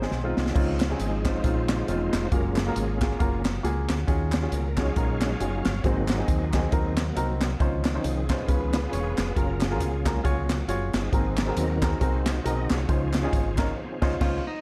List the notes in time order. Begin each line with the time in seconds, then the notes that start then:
Already playing: G#2 D#3 G#3 C4 G#4 C5
0.02 G#3 C4 D#4 G#4, snare
0.11 B1, snare
0.23 G#3 C4 D#4 F4
0.37 C2, snare
0.46 snare
0.55 C#2 C#3 F3 G#3 C4 C#4 D#4 F4, kick, crash
0.80 snare, clap, closed hi-hat
0.90 C4 C#4 D#4 G#4
1.00 G#1 G#4, closed hi-hat
1.25 C4 C#4 D#4 F4 C5, kick, snare, clap, closed hi-hat
1.44 A#1 C4 C#4 D#4 F4, kick, closed hi-hat
1.69 D#4 F4 C5, snare, clap, closed hi-hat
1.88 E1 C4 C#4 D#4 F4, closed hi-hat
2.13 F1, snare, clap, closed hi-hat
2.32 F#1 G#3 A#3 C#4 F4 F#4 G#4 A#4, kick, closed hi-hat
2.56 C#4 F4 G#4, snare, clap, closed hi-hat
2.67 A#3 F4 F#4 A#4
2.76 G#1, closed hi-hat
3.01 A#3 F4 F#4 G#4, kick, snare, clap, closed hi-hat
3.19 F#1 A#3 F4 F#4 A#4, kick, closed hi-hat
3.45 snare, clap, closed hi-hat
3.63 C#2 A#3 F4 F#4 G#4, closed hi-hat
3.89 D2, snare, clap, closed hi-hat
4.07 D#2 D#3 C#4 F4 F#4 G#4, kick, closed hi-hat
4.32 snare, clap, closed hi-hat
4.42 C#4 F4 F#4 G#4
4.52 C#2 A#4, closed hi-hat
4.77 F#3 G#3 C#4 D#4 F4 F#4 G#4 C#5 F5, kick, snare, clap, closed hi-hat
4.96 A#1 C#4 F4 F#4 A#4, kick, closed hi-hat
5.21 F#3 C#5 F5, snare, clap, closed hi-hat
5.40 F#1 C#4 F4 F#4 G#4, closed hi-hat
5.65 G1, snare, clap, closed hi-hat
5.84 G#1 G#2 F#3 A#3 C4 D#4 F#4 G#4 C5, kick, closed hi-hat
6.08 G#4, snare, clap, closed hi-hat
6.12 C4 D#4
6.18 C4 D#4 F#4 G#4
6.28 D#2, kick, closed hi-hat
6.53 C4 D#4 F#4 G#4, kick, snare, clap, closed hi-hat
6.71 D#2 C4 D#4 F#4 A#4, kick, closed hi-hat
6.97 snare, clap, closed hi-hat
7.15 C2 C4 D#4 F#4 A#4, closed hi-hat
7.41 snare, clap, closed hi-hat
7.60 C#2 C#3 D#3 F3 C4 C#4 D#4 F4 C5, kick, closed hi-hat
7.84 snare, clap, closed hi-hat
7.94 C#4 D#4 F4 C5
8.04 C2 G#4, closed hi-hat
8.29 C#4 D#4 F4 G#4 B4 C5, kick, snare, clap, closed hi-hat
8.48 C#2 C#3 D#3 F3 B3 C#4 F4 G#4 B4, kick, closed hi-hat
8.73 F4 G#4 B4, snare, clap, closed hi-hat
8.92 E1 C#4 F4 G#4 C#5, closed hi-hat
9.18 F1, snare, clap, closed hi-hat
9.36 F#1 C#4 F4 F#4 G#4 A#4, kick, closed hi-hat
9.60 C#4 F4 G#4, snare, clap, closed hi-hat
9.71 F4 F#4 G#4 A#4
9.80 C#2, closed hi-hat
10.05 F#3 G#3 A#3 F4 F#4 G#4 A#4, kick, snare, clap, closed hi-hat
10.24 C#2 F4 F#4 G#4 C#5, kick, closed hi-hat
10.50 snare, clap, closed hi-hat
10.68 F#1 F4 F#4 G#4 C#5, closed hi-hat
10.94 G1 C4 D#4 G#4, snare, clap, closed hi-hat
11.12 G#1 G#2 F#3 A#3 C4 F#4 G#4 A#4, kick, closed hi-hat
11.37 snare, clap, closed hi-hat
11.47 C4 F#4 G#4 A#4
11.57 D#2 D#4 F#4 A#4, closed hi-hat
11.82 C4 F#4 G#4 A#4, kick, snare, clap, closed hi-hat
12.00 C2 C4 D#4 F#4 G#4 A#4 C5, kick, closed hi-hat
12.26 snare, clap, closed hi-hat
12.44 B1 C4 F#4 G#4 A#4 D#5, closed hi-hat
12.70 C2 F4 G#4 C#5, snare, clap, closed hi-hat
12.88 C#2 C#3 F3 C#4 D#4 F4 C5, kick, closed hi-hat
13.13 snare, clap, closed hi-hat
13.23 C#4 D#4 F4 G#4
13.33 G#1, kick, closed hi-hat
13.58 C#4 D#4 F4 A#4, kick, snare, clap, closed hi-hat
13.76 F3 C4 D#4
14.02 C#2 C#4 D#4 F4 C5, kick, snare, crash
14.21 C#2 C#4 D#4 F4 C5, kick, snare, crash
14.47 D#4